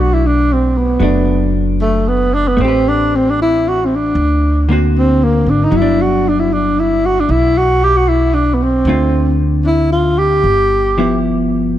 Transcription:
Already playing: upright bass B1, hollow-body jazz guitar F#3 A3 D4
0.01 tenor saxophone F#4
0.14 tenor saxophone E4
0.27 tenor saxophone D4
0.53 tenor saxophone C4
0.78 tenor saxophone B3
1.00 upright bass F#1, hollow-body jazz guitar F#3 A3 D4
1.82 tenor saxophone A3
2.08 tenor saxophone B3
2.34 tenor saxophone D4
2.48 tenor saxophone B3
2.57 upright bass A1, hollow-body jazz guitar A3 C4
2.62 tenor saxophone C4, hollow-body jazz guitar G4
2.68 hollow-body jazz guitar B4
2.89 tenor saxophone D4
3.16 tenor saxophone C4
3.30 tenor saxophone D4
3.42 tenor saxophone E4
3.69 tenor saxophone F#4
3.86 tenor saxophone C4
3.96 tenor saxophone D4
4.15 upright bass D2
4.69 hollow-body jazz guitar D3 A#3 C4 F#4
4.98 tenor saxophone C4
5.24 tenor saxophone A#3
5.46 upright bass G#1, tenor saxophone D4
5.64 tenor saxophone D#4
5.71 upright bass G1, hollow-body jazz guitar F#3
5.77 tenor saxophone E4
5.82 hollow-body jazz guitar D4
6.02 tenor saxophone F#4
6.29 tenor saxophone D4
6.40 tenor saxophone E4
6.53 tenor saxophone D4
6.80 tenor saxophone E4
7.06 tenor saxophone F#4
7.20 tenor saxophone D4
7.29 upright bass B1, tenor saxophone E4
7.58 tenor saxophone F#4
7.84 tenor saxophone G4
7.97 tenor saxophone F#4
8.09 tenor saxophone E4
8.34 tenor saxophone D4
8.54 tenor saxophone B3
8.63 tenor saxophone C4
8.85 upright bass D2, hollow-body jazz guitar D3 A3 F4
8.89 hollow-body jazz guitar C4
9.64 tenor saxophone D4 E4
9.93 tenor saxophone F4
10.18 tenor saxophone G4
10.44 upright bass G1
10.98 hollow-body jazz guitar F3 B3 E4

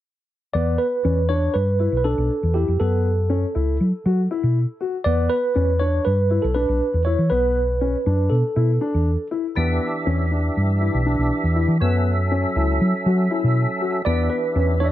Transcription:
0.53 fingered electric bass E2, grand piano B3, tine electric piano D5
0.78 tine electric piano B4
1.04 fingered electric bass E2, grand piano C#4
1.29 grand piano D4, tine electric piano C#5
1.54 fingered electric bass G2, tine electric piano B4
1.80 grand piano E4
1.92 fingered electric bass B1
1.97 tine electric piano B4
2.04 grand piano D4, tine electric piano A4
2.18 fingered electric bass B1
2.43 fingered electric bass E2
2.54 grand piano E4, tine electric piano G4
2.68 fingered electric bass F2
2.80 fingered electric bass F#2, grand piano B3, tine electric piano A4
3.30 grand piano C#4
3.55 fingered electric bass C#2, grand piano E4
3.80 fingered electric bass F#3
4.05 fingered electric bass F#3, grand piano F#4
4.31 grand piano E4
4.43 fingered electric bass B2
4.81 grand piano F#4
5.04 fingered electric bass E2, grand piano B3, tine electric piano D5
5.29 tine electric piano B4
5.55 fingered electric bass E2, grand piano C#4
5.79 grand piano D4, tine electric piano C#5
6.05 fingered electric bass G2, tine electric piano B4
6.30 grand piano E4
6.42 fingered electric bass B1, tine electric piano A4
6.54 grand piano D4, tine electric piano B4
6.69 fingered electric bass B1
6.94 fingered electric bass E2
7.05 grand piano E4, tine electric piano C#5
7.18 fingered electric bass E3
7.30 fingered electric bass B1, grand piano B3, tine electric piano B4
7.81 grand piano C#4
8.06 fingered electric bass F#2, grand piano D4
8.30 fingered electric bass B2, tine electric piano A4
8.56 fingered electric bass B2, grand piano E4
8.81 grand piano D4
8.94 fingered electric bass E2
9.31 grand piano E4
9.56 fingered electric bass E2, tonewheel organ E3 D4 G4 E5, grand piano B3
10.06 fingered electric bass E2, grand piano C#4
10.31 grand piano D4
10.57 fingered electric bass G2
10.81 grand piano E4
10.94 fingered electric bass B1
11.06 grand piano D4
11.19 fingered electric bass B1
11.44 fingered electric bass E2
11.56 grand piano E4
11.68 fingered electric bass E3
11.80 fingered electric bass F#2, tonewheel organ F#3 C#4 A4 E5, grand piano B3
12.31 grand piano C#4
12.56 fingered electric bass C#2, grand piano E4
12.81 fingered electric bass F#3
13.06 fingered electric bass F#3, grand piano F#4
13.31 grand piano E4
13.44 fingered electric bass B2
13.81 grand piano F#4
14.05 fingered electric bass E2, tonewheel organ E3 D4 G4 E5, grand piano B3, tine electric piano D5
14.30 tine electric piano B4
14.55 fingered electric bass E2, grand piano C#4
14.80 grand piano D4, tine electric piano C#5
14.86 tine electric piano D5

